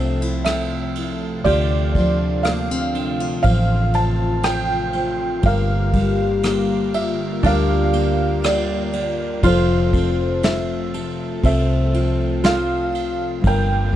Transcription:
Already playing: fingered electric bass C2, analog synth pad C3 F3 A3 E5, steel-string acoustic guitar F3 C4 D4 A4, felt piano A4 E5
0.22 steel-string acoustic guitar E4
0.44 steel-string acoustic guitar A4, felt piano E5, cross-stick, ride
0.95 steel-string acoustic guitar E4, ride
1.44 fingered electric bass D2, steel-string acoustic guitar D3, analog synth pad D4, felt piano F4 D5, harp G4, kick, ride
1.95 steel-string acoustic guitar F3, kick, ride
2.43 steel-string acoustic guitar A#3, felt piano F5, cross-stick, ride
2.71 steel-string acoustic guitar C4
2.95 steel-string acoustic guitar D4, ride
3.20 steel-string acoustic guitar F4
3.43 fingered electric bass A1, steel-string acoustic guitar F3, analog synth pad F4, felt piano C5 F5, kick, ride
3.93 steel-string acoustic guitar C4, felt piano A5, ride
4.43 steel-string acoustic guitar F4, felt piano G5, cross-stick, ride
4.93 steel-string acoustic guitar C4, ride
5.43 fingered electric bass G1, steel-string acoustic guitar G2, analog synth pad D3 G3 A#3 F4, felt piano F5, kick, ride
5.47 felt piano A#4
5.93 steel-string acoustic guitar G3, kick, ride
6.43 steel-string acoustic guitar A#3, cross-stick, ride
6.94 steel-string acoustic guitar F4, felt piano E5, ride
7.43 fingered electric bass D2, steel-string acoustic guitar G3, harp D4, felt piano A#4 F5, kick, ride
7.93 steel-string acoustic guitar A#3, ride
8.42 steel-string acoustic guitar F4, felt piano D5, cross-stick, ride
8.93 steel-string acoustic guitar A#3, ride
9.43 fingered electric bass F1, analog synth pad C3 F3 A3, steel-string acoustic guitar F3 C4 F4 A4, harp F4, felt piano C5, kick, ride
9.47 felt piano A4
9.93 steel-string acoustic guitar C4, kick, ride
10.43 steel-string acoustic guitar F4, felt piano E5, snare, ride
10.94 steel-string acoustic guitar A4, ride
11.43 fingered electric bass C2, steel-string acoustic guitar C4, felt piano A4 E5, kick, ride
11.94 steel-string acoustic guitar F4, ride
12.44 harp F4, steel-string acoustic guitar A4, felt piano F5, snare, ride
12.93 steel-string acoustic guitar F4, ride
13.41 fingered electric bass G1, steel-string acoustic guitar G2, analog synth pad D3 G3 A#3 F4, kick, ride
13.47 felt piano A#4 G5
13.92 steel-string acoustic guitar G3

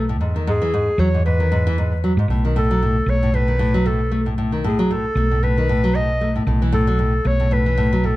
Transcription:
Already playing: fingered electric bass B1
0.09 nylon-string guitar A2
0.20 fingered electric bass E2, nylon-string guitar G#2
0.36 nylon-string guitar D#3
0.47 nylon-string guitar G#2, clarinet G#4
0.62 nylon-string guitar E3
0.74 nylon-string guitar G#2
0.98 fingered electric bass E2, nylon-string guitar F#3, clarinet C#5
1.14 nylon-string guitar G#2
1.25 nylon-string guitar G#2, clarinet B4
1.40 nylon-string guitar D#3
1.52 nylon-string guitar G#2
1.67 nylon-string guitar E3
1.78 nylon-string guitar G#2
2.04 nylon-string guitar F#3
2.17 fingered electric bass G#2, nylon-string guitar G#2
2.28 fingered electric bass B1, nylon-string guitar A2
2.45 nylon-string guitar D#3
2.56 nylon-string guitar A2, clarinet A4
2.71 nylon-string guitar F#3
2.82 nylon-string guitar A2
3.06 fingered electric bass B1, nylon-string guitar A3, clarinet C#5
3.23 nylon-string guitar A2
3.34 nylon-string guitar A2, clarinet B4
3.48 nylon-string guitar D#3
3.59 nylon-string guitar A2
3.74 nylon-string guitar F#3
3.86 nylon-string guitar A2, clarinet A4
4.11 nylon-string guitar A3
4.26 nylon-string guitar A2
4.38 nylon-string guitar A2
4.52 nylon-string guitar D#3
4.64 nylon-string guitar A2, clarinet G#4
4.79 nylon-string guitar F#3
4.91 nylon-string guitar A2, clarinet A4
5.15 fingered electric bass B1, nylon-string guitar A3
5.31 nylon-string guitar A2
5.43 nylon-string guitar A2, clarinet B4
5.58 nylon-string guitar D#3
5.69 nylon-string guitar A2
5.84 nylon-string guitar F#3
5.95 nylon-string guitar A2, clarinet D#5
6.21 nylon-string guitar A3
6.36 nylon-string guitar A2
6.47 fingered electric bass B1, nylon-string guitar A2
6.62 nylon-string guitar E3
6.72 nylon-string guitar A2, clarinet A4
6.87 nylon-string guitar F#3
6.99 nylon-string guitar A2
7.25 fingered electric bass B1, nylon-string guitar A3, clarinet C#5
7.40 nylon-string guitar A2
7.51 nylon-string guitar A2, clarinet B4
7.66 nylon-string guitar E3
7.78 nylon-string guitar A2
7.93 nylon-string guitar F#3
8.04 nylon-string guitar A2, clarinet A4

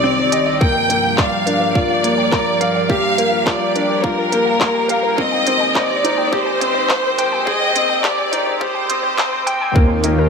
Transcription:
Already playing: analog synth pad C2 C3 D#3 G4, upright piano C4 D4 D#4 G4 D#5, violin section D5
0.04 upright piano C4, synth arpeggio sound C5
0.18 synth arpeggio sound C5
0.32 upright piano D#5, synth arpeggio sound G5, closed hi-hat
0.46 synth arpeggio sound D5
0.60 analog synth pad G2 F3 A#3, upright piano A#3, synth arpeggio sound A#4, violin section G5, kick
0.75 synth arpeggio sound A#4
0.89 upright piano A#3, synth arpeggio sound A#4, closed hi-hat
1.04 synth arpeggio sound F5
1.18 synth arpeggio sound A#4, upright piano D5, violin section F5, kick, clap
1.32 synth arpeggio sound G5
1.46 upright piano D4, synth arpeggio sound A#4, closed hi-hat
1.60 synth arpeggio sound A#4
1.75 upright piano F4, synth arpeggio sound A#4, violin section D5, kick
1.90 synth arpeggio sound F5
2.04 upright piano A#3, synth arpeggio sound A#4, closed hi-hat
2.18 synth arpeggio sound G5
2.32 synth arpeggio sound A#4, upright piano A#4, kick, clap
2.46 synth arpeggio sound A#4
2.61 synth arpeggio sound A#4, upright piano F5, closed hi-hat
2.75 synth arpeggio sound F5
2.89 upright piano G4, synth arpeggio sound A#4, violin section F5, kick
3.04 synth arpeggio sound G5
3.18 upright piano A#3, synth arpeggio sound A#4, closed hi-hat
3.47 upright piano F4, synth arpeggio sound A#4, violin section D5, kick, clap
3.61 synth arpeggio sound F5
3.75 upright piano D4, synth arpeggio sound A#4, closed hi-hat
3.90 synth arpeggio sound G5
4.03 upright piano F4, synth arpeggio sound A#4, violin section A#4, kick
4.18 synth arpeggio sound A#4
4.32 upright piano A#3, synth arpeggio sound A#4, closed hi-hat
4.46 synth arpeggio sound F5
4.60 upright piano A#3, synth arpeggio sound A#4, kick, clap
4.74 synth arpeggio sound G5
4.88 synth arpeggio sound A#4, upright piano F5, closed hi-hat
5.03 synth arpeggio sound A#4
5.18 analog synth pad G#2 D#3 C4, upright piano C4, violin section D#5, kick
5.32 synth arpeggio sound G5
5.47 upright piano C4, synth arpeggio sound C5, closed hi-hat
5.60 synth arpeggio sound G#5
5.75 synth arpeggio sound C5, violin section D5, upright piano D#5, kick, clap
5.90 synth arpeggio sound C5
6.03 upright piano D#4, synth arpeggio sound C5, closed hi-hat
6.18 synth arpeggio sound G5
6.32 upright piano G4, synth arpeggio sound C5, violin section C5, kick
6.46 synth arpeggio sound G#5
6.60 upright piano C4, synth arpeggio sound C5, closed hi-hat
6.74 synth arpeggio sound C5
6.89 synth arpeggio sound C5, upright piano C5, kick, clap
7.03 synth arpeggio sound G5
7.18 synth arpeggio sound C5, upright piano G5, closed hi-hat
7.32 synth arpeggio sound G#5
7.46 upright piano G#4, synth arpeggio sound C5, violin section D#5, kick
7.61 synth arpeggio sound C5
7.75 upright piano C4, synth arpeggio sound C5, closed hi-hat
7.89 synth arpeggio sound G5
8.03 upright piano G4, synth arpeggio sound C5, violin section D5, kick, clap
8.18 synth arpeggio sound G#5
8.32 upright piano D#4, synth arpeggio sound C5, closed hi-hat
8.46 synth arpeggio sound C5
8.60 upright piano G4, synth arpeggio sound C5, violin section C5, kick
8.75 synth arpeggio sound G5
8.89 upright piano C4, synth arpeggio sound D#6, closed hi-hat
9.03 synth arpeggio sound C5
9.18 upright piano C4, synth arpeggio sound D#6, kick, clap
9.33 synth arpeggio sound C5
9.46 synth arpeggio sound G5, upright piano G5, closed hi-hat
9.61 synth arpeggio sound G#5
9.75 double bass section D#2, analog synth pad D#3 A#3 F4 G4, upright piano A#3, synth arpeggio sound A#4, kick
10.04 upright piano A#3, synth arpeggio sound D#5, closed hi-hat
10.18 synth arpeggio sound A#4

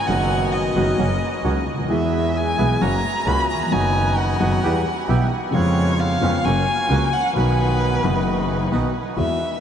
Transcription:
0.06 double bass F#1, grand piano F#2 D#3 F#3 B3 F#4, bandoneon B3 D#4 F#4, violin F#5
0.53 violin D#5
0.75 double bass F#1, grand piano F#2 D#3 F#3 B3 F#4, bandoneon B3 D#4 F#4
0.98 double bass F#1, grand piano F#2 C#3 F#3 A#3 F#4, bandoneon A#3 C#4 F#4
1.43 double bass C#2, grand piano C#2 C#3 F#3 A#3 F#4, bandoneon A#3 C#4 F#4
1.67 double bass D2
1.73 grand piano C#2
1.79 grand piano D2
1.85 grand piano D#2 E3
1.89 double bass E2, grand piano E2 G#3 B3 G#4, bandoneon B3 E4 G#4, violin E5
2.37 violin G#5
2.57 double bass B1, grand piano B1 B2 E3 G#3 B3 G#4, bandoneon B3 E4 G#4
2.80 double bass F#1, grand piano F#2 C#3 F#3 A#3 F#4, bandoneon A#3 C#4 F#4, violin A#5
3.25 double bass C#2, grand piano C#2 C#3 F#3 A#3 F#4, bandoneon A#3 C#4 F#4, violin B5
3.50 violin A#5
3.54 grand piano D#2
3.59 grand piano E2
3.66 grand piano F2 D#3
3.71 double bass F#1, grand piano F#2 F#3 B3 F#4, bandoneon B3 D#4 F#4, violin G#5
4.18 violin F#5
4.40 double bass F#1, grand piano F#2 D#3 F#3 B3 F#4, bandoneon B3 D#4 F#4
4.63 grand piano E2 E3 G3 B3 G4, double bass E2, bandoneon B3 E4 G4
5.08 double bass B1, grand piano B1 B2 E3 G3 B3 G4, bandoneon B3 E4 G4
5.51 grand piano F2 C#3 F3 G#3 B3, double bass F2, bandoneon B3 C#4 F4, violin C#5
5.55 grand piano F4
6.00 violin F5
6.21 double bass F2, grand piano F2 C#3 F3 G#3 B3 F4, bandoneon B3 C#4 F4
6.44 double bass F#1, grand piano F#2 C#3 F#3 A#3 F#4, bandoneon A#3 C#4 F#4, violin G#5
6.89 double bass C#2, grand piano C#2 C#3 F#3 A#3 F#4, bandoneon A#3 C#4 F#4
7.13 violin F#5
7.33 double bass B1, grand piano B1 B2 D#3 F#3 B3 F#4, bandoneon B3 D#4 F#4, violin B4
8.01 grand piano F#1 F#2 D#3 F#3 B3, double bass F#1, bandoneon B3 D#4 F#4
8.05 grand piano F#4
8.71 grand piano B1 B2 D#3 F#3 B3 F#4, double bass B1, bandoneon B3 D#4 F#4
9.16 grand piano E2 E3 G#3 B3 F#4, double bass E2, violin E5

